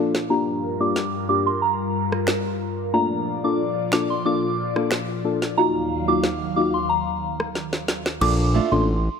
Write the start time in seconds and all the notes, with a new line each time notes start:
Already playing: A#2 F3 A#3 D4 F4 A4
0.15 snare
0.30 G2 G3 A#3 D4 F4 G4 A#4 A#5
0.80 A#3 D4 F4 G4 D6
0.96 snare
1.29 A#3 D4 F4 G4 D6
1.46 C6
1.62 A#5
2.12 cross-stick
2.27 finger snap, snare
2.93 A#2 F3 A3 A#3 D4 F4 D5 A#5
3.44 A#3 D4 F4 A4 D6
3.92 A#3 D4 F4 A4 D6, finger snap, snare
4.10 C6
4.25 A#3 D4 F4 A4 D6
4.76 A#3 D4 F4 A4, cross-stick
4.91 finger snap, snare
5.24 A#3 D4 F4 A4
5.42 snare
5.57 D#2 D#3 F#3 A#3 D#4 F4 F#4 F5 A#5
6.08 A#3 D#4 F4 F#4 D6
6.24 snare
6.56 A#3 D#4 F4 F#4 D6
6.74 C6
6.89 A#5
7.40 cross-stick
7.55 snare
7.73 snare
7.88 snare
8.06 snare
8.21 A#1 A#3 D4 F4 A4 D6, crash
8.54 A3 D4 F4
8.72 A1 A#3 D4 F4 A4 C6